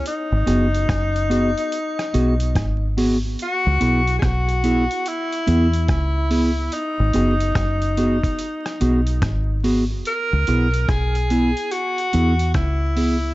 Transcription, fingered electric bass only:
X:1
M:4/4
L:1/16
Q:"Swing 16ths" 1/4=72
K:C#dor
V:1 name="Fingered electric bass" clef=bass
z G,,, F,,,2 F,,,3 z3 B,,,2 G,,,4 | z C,, B,,,2 B,,,3 z3 E,,2 C,,4 | z G,,, F,,,2 F,,,3 z3 B,,,2 G,,,4 | z C,, B,,,2 B,,,3 z3 E,,2 C,,4 |]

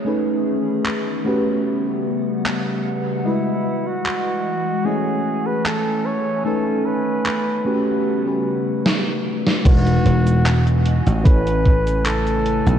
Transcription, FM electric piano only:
X:1
M:4/4
L:1/8
Q:1/4=75
K:E
V:1 name="FM electric piano"
[A,CDGB]3 [A,CF=GB]4- [A,CFGB] | [G,EFBd]4 [A,CEc]4 | [A,CDAB]3 [A,CF=GB]3 z2 | [G,DEFB]4 [A,CEAc]4 |]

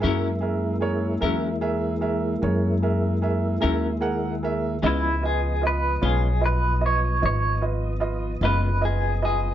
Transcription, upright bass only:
X:1
M:12/8
L:1/8
Q:3/8=50
K:Gb
V:1 name="Upright bass" clef=bass
G,,3 _F,,3 G,,3 E,,3 | D,,3 C,,3 A,,,3 G,,,3 |]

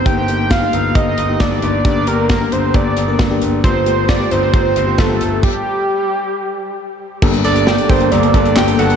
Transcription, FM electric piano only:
X:1
M:4/4
L:1/16
Q:1/4=134
K:Gm
V:1 name="FM electric piano"
[B,EG]2 [B,EG]2 z [B,EG]2 z [B,EG]2 z [B,EG]2 [B,EG]2 z | [B,DG]2 [B,DG]2 z [B,DG]2 z [B,DG]2 z [B,DB]2 [B,DG]2 z | [A,FG]2 [A,FG]2 z [A,FG]2 z [A,FG]2 z [A,FG]2 [A,FG]2 z | z16 |
[B,DGA]3 z [B,DGA]2 [B,DGA]3 z [B,DGA]2 z [B,DGA]2 z |]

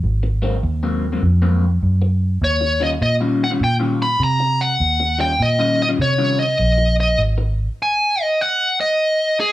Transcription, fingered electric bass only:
X:1
M:4/4
L:1/8
Q:"Swing" 1/4=101
K:Abmix
V:1 name="Fingered electric bass" clef=bass
A,,,2 E,,2 F,,2 G,,2 | E,,2 B,,2 B,,2 C,2 | E,,2 B,,2 C,2 B,,,2 | A,,,2 z6 |]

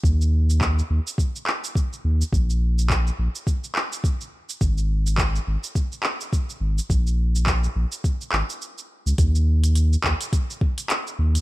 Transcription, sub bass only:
X:1
M:4/4
L:1/16
Q:"Swing 16ths" 1/4=105
K:Abmix
V:1 name="Sub bass" clef=bass
E,,4- E,, z E,, z6 z E,, z | B,,,4- B,,, z B,,, z8 z | A,,,4- A,,, z A,,, z6 z A,,, z | B,,,4- B,,, z B,,, z3 A,,, z4 D,, |
E,,4- E,, z E,, z6 z E,, z |]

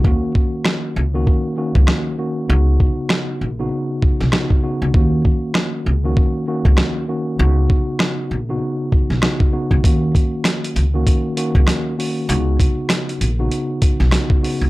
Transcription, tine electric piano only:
X:1
M:4/4
L:1/16
Q:"Swing 16ths" 1/4=98
K:Ebm
V:1 name="Tine electric piano"
[E,B,DG]6 z [E,B,DG]3 [E,B,DG]4 [E,B,DG]2 | [D,CEG]6 z [D,CEG]4- [D,CEG] [D,CEG]2 [D,CEG]2 | [E,B,DG]6 z [E,B,DG]3 [E,B,DG]4 [E,B,DG]2 | [D,CEG]6 z [D,CEG]4- [D,CEG] [D,CEG]2 [D,CEG]2 |
[E,B,DG]6 z [E,B,DG]3 [E,B,DG]4 [E,B,DG]2 | [D,CEG]6 z [D,CEG]4- [D,CEG] [D,CEG]2 [D,CEG]2 |]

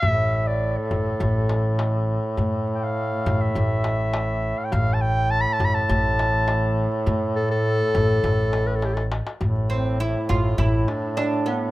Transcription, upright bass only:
X:1
M:4/4
L:1/8
Q:1/4=102
K:none
V:1 name="Upright bass" clef=bass
A,,,3 A,,, A,,,4 | A,,3 A,,, A,,,4 | A,,,3 A,,, A,,,4 | A,,3 A,,, A,,,4 |
A,,,3 A,,, A,,, z3 |]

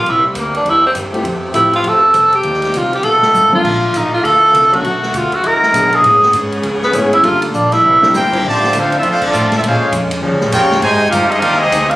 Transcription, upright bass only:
X:1
M:4/4
L:1/8
Q:"Swing" 1/4=201
K:F
V:1 name="Upright bass" clef=bass
C,,2 D,,2 E,,2 G,,2 | F,,2 A,,2 F,,2 C,,2 | _E,,2 C,,2 =B,,, z _A,,,2 | B,,,2 A,,, z D,,2 C,,2 |
=B,,,2 D,, z E,,2 =B,,2 | A,,2 ^G,,2 ^C,,2 ^G,,,2 | G,,,2 B,,,2 C,,2 G,,,2 | A,,,2 D,,2 F,,2 A,,2 |
B,, z F,,2 (3_E,, _D,, B,,, F,, z | _A,,2 G,,2 _E,,2 D,,2 |]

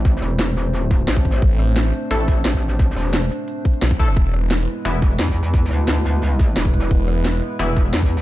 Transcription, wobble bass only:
X:1
M:4/4
L:1/8
Q:1/4=175
K:Am
V:1 name="Wobble bass" clef=bass
A,,, E,,,4- E,,, A,,,2 | z4 A,,,2 A,,,2- | A,,, E,,,2 z4 z | z4 E,,,2 E,,2- |
E,, D,,4- D,, E,,,2 | z4 E,,,2 E,,2 |]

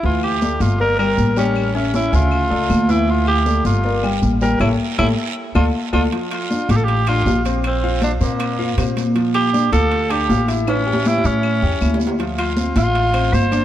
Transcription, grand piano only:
X:1
M:4/4
L:1/8
Q:1/4=158
K:Dm
V:1 name="Grand piano"
[E,Ee]2 [A,Ad]2 [B,Bd] [G,Gg]2 [G,Gg]- | [G,Gg] [^C^ce] [Cce] [^C,Ce]2 [A,Ad]2 [E,Ee] | [E,Ee]2 [A,Ad]2 [B,Bd] [G,Gg]2 [G,Gg] | [GA^c] z [GAc] z2 [FAd] z [FAd] |
[F,F]2 [Dd] [Ff]2 [Dd] [Ff] [Cc]- | [Cc] [Ff]2 [Cc]2 [Ff] [Cc]2 | [F,F]2 [Dd] [Ff]2 [Dd] [Ff] [Ee]- | [Ee] [Gg]2 [Ee]2 [Gg] [Ee]2 |
[F,F]2 [Cc] [Ff]2 [Cc] [Ff] [Dd] |]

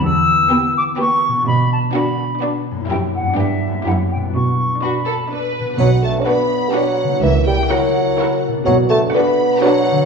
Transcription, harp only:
X:1
M:3/4
L:1/8
Q:1/4=125
K:Bm
V:1 name="Harp"
[E,B,G]6 | [B,,B,DF]6 | [F,,^A,EG]2 [G,,B,DG]2 [F,,A,EG]2 | [B,,B,DF]6 |
[B,,B,DF]6 | [C,^A,EF]6 | [B,,B,DF]6 |]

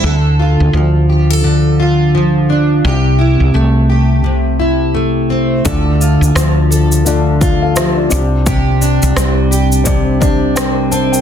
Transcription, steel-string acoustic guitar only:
X:1
M:4/4
L:1/16
Q:"Swing 16ths" 1/4=86
K:Dm
V:1 name="Steel-string acoustic guitar"
[D,A]2 F2 F,2 G A D,2 F2 F,2 D2 | [C,G]2 E2 A,2 G2 C,2 E2 A,2 C2 | [D,A]2 F2 F,2 A2 D,2 F2 F,2 z2 | [C,G]2 D2 G,2 G2 C,2 D2 G,2 C2 |]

